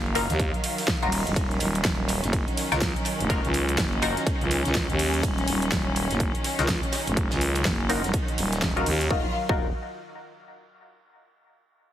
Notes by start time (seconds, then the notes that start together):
Already playing: F#1 D#3 F#3 F5
0.06 ride
0.15 D#4 F4 F#4 A#4, snare, open hi-hat, ride
0.30 D#2, snare, closed hi-hat
0.39 kick, closed hi-hat, ride
0.54 closed hi-hat
0.64 open hi-hat, ride
0.78 snare, open hi-hat
0.88 kick, snare, closed hi-hat, ride
1.02 D#1 D#4 F4 F#4 A#4, closed hi-hat
1.12 open hi-hat
1.27 D#1, closed hi-hat
1.36 D#1 C#4, kick, closed hi-hat, ride
1.51 closed hi-hat
1.60 D#1, open hi-hat, ride
1.75 closed hi-hat
1.84 D#1, kick, snare, closed hi-hat, ride
2.08 open hi-hat, ride
2.22 F#1, snare, closed hi-hat
2.33 kick, closed hi-hat, ride
2.48 closed hi-hat
2.57 snare, open hi-hat, ride
2.72 C#2 D#4 F4 F#4 A#4, snare, closed hi-hat
2.81 kick, snare, closed hi-hat, ride
2.96 closed hi-hat
3.05 open hi-hat, ride
3.20 F1, closed hi-hat
3.30 D#4 F4 F#4 A#4, kick, closed hi-hat, ride
3.44 C#2, closed hi-hat
3.54 open hi-hat, ride
3.69 closed hi-hat
3.77 F#1, kick, snare, closed hi-hat, ride
3.92 ride
4.02 D#4 F4 F#4 A#4, snare, open hi-hat, ride
4.16 snare, closed hi-hat
4.27 kick, closed hi-hat, ride
4.41 C#2, closed hi-hat
4.51 open hi-hat, ride
4.65 C#2, snare, closed hi-hat
4.75 kick, snare, closed hi-hat, ride
4.90 D#2, closed hi-hat
4.99 open hi-hat
5.14 closed hi-hat
5.23 D#1, kick, closed hi-hat, ride
5.38 closed hi-hat
5.47 D#1, open hi-hat, ride
5.62 closed hi-hat
5.71 D#1, kick, snare, closed hi-hat, ride
5.96 open hi-hat, ride
6.10 F#1, snare, closed hi-hat
6.20 kick, closed hi-hat, ride
6.35 closed hi-hat
6.44 snare, open hi-hat, ride
6.59 C#2 D#4 F4 F#4 A#4, snare, closed hi-hat
6.69 kick, snare, closed hi-hat, ride
6.83 closed hi-hat
6.92 snare, open hi-hat, ride
7.07 F1, closed hi-hat
7.17 kick, closed hi-hat, ride
7.31 C#2, snare, closed hi-hat, ride
7.41 open hi-hat
7.55 closed hi-hat, ride
7.65 F#1, kick, snare, closed hi-hat, ride
7.80 ride
7.89 D#4 F4 F#4 A#4, snare, open hi-hat, ride
8.04 D#1, snare, closed hi-hat
8.13 kick, closed hi-hat, ride
8.28 closed hi-hat
8.38 D#1, open hi-hat, ride
8.53 snare, closed hi-hat
8.62 kick, snare, closed hi-hat, ride
8.77 D#4 F4 F#4 A#4, closed hi-hat
8.86 D#2, open hi-hat
9.01 closed hi-hat
9.10 D#1 D#3 F#3 D#4 F4 F#4 A#4, kick
9.49 D#1 D#4 F4 F#4 A#4, kick